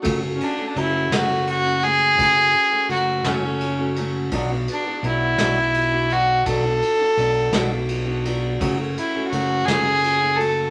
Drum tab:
RD |xxxxxx|xxxxxx|xxxxxx|xxxxxx|
SD |---o--|---o--|---o--|---o--|
BD |o-----|o-----|o-----|o-----|

RD |xxxxxx|
SD |---o--|
BD |o-----|